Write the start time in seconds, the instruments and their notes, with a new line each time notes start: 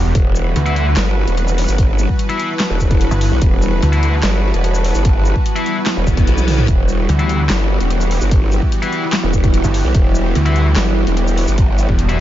Already playing: supersaw synth E3 B3 F#4 G4, ambient pad G3 E4 F#5
0.05 detuned saw bass E1
0.15 wobble bass E1, supersaw synth B4, kick, closed hi-hat
0.35 shaker
0.56 detuned saw bass D2, closed hi-hat
0.66 distorted electric guitar E4 B4 E5, closed hi-hat
0.76 closed hi-hat
0.97 wobble bass G1, snare, clap, closed hi-hat
1.28 wobble bass E1, closed hi-hat
1.38 closed hi-hat
1.48 shaker
1.58 open hi-hat
1.68 wobble bass G1, ambient pad A5, shaker
1.78 kick, closed hi-hat
1.99 shaker
2.09 kick
2.19 closed hi-hat
2.29 distorted electric guitar E4 B4 E5, closed hi-hat
2.40 closed hi-hat
2.60 snare, clap, closed hi-hat
2.70 wobble bass E1
2.80 kick, shaker
2.91 kick, closed hi-hat
3.01 closed hi-hat
3.11 detuned saw bass G1, shaker
3.21 open hi-hat
3.32 wobble bass B1
3.42 wobble bass E1, kick, closed hi-hat
3.62 shaker
3.82 detuned saw bass D2, closed hi-hat
3.93 distorted electric guitar E4 B4 E5, closed hi-hat
4.03 closed hi-hat
4.23 wobble bass G1, snare, clap, closed hi-hat
4.54 wobble bass E1, closed hi-hat
4.64 closed hi-hat
4.75 shaker
4.84 open hi-hat
4.95 wobble bass G1, shaker
5.05 kick, closed hi-hat
5.25 shaker
5.36 kick
5.46 closed hi-hat
5.56 distorted electric guitar E4 B4 E5, closed hi-hat
5.66 closed hi-hat
5.86 snare, clap, closed hi-hat, reverse cymbal
5.97 wobble bass E1
6.07 detuned saw bass E1, kick, shaker
6.17 kick, closed hi-hat
6.27 wobble bass B1, closed hi-hat
6.38 high tom, shaker
6.48 open hi-hat, mid tom
6.58 mid tom
6.68 wobble bass E1, supersaw synth G4, kick, closed hi-hat
6.89 shaker
7.09 detuned saw bass D2, closed hi-hat
7.19 distorted electric guitar E4 B4 E5, closed hi-hat
7.29 closed hi-hat
7.50 wobble bass G1, ambient pad E5, snare, clap, closed hi-hat
7.80 wobble bass E1, closed hi-hat
7.91 closed hi-hat
8.01 shaker
8.11 open hi-hat
8.21 wobble bass G1, shaker
8.31 kick, closed hi-hat
8.52 shaker
8.62 kick
8.72 closed hi-hat
8.82 distorted electric guitar E4 B4 E5, closed hi-hat
8.93 closed hi-hat
9.13 snare, clap, closed hi-hat
9.23 wobble bass E1
9.33 kick, shaker
9.44 kick, closed hi-hat
9.54 closed hi-hat
9.64 detuned saw bass G1, shaker
9.74 open hi-hat
9.85 wobble bass B1
9.95 wobble bass E1, kick, closed hi-hat
10.15 shaker
10.35 detuned saw bass D2, closed hi-hat
10.46 distorted electric guitar E4 B4 E5, closed hi-hat
10.56 closed hi-hat
10.76 wobble bass G1, snare, clap, closed hi-hat
11.07 wobble bass E1, closed hi-hat
11.17 closed hi-hat
11.27 shaker
11.37 open hi-hat
11.48 wobble bass G1, shaker
11.58 kick, closed hi-hat
11.78 shaker
11.89 detuned saw bass E1, kick
11.99 closed hi-hat
12.09 detuned saw bass E1, distorted electric guitar E4 B4 E5, closed hi-hat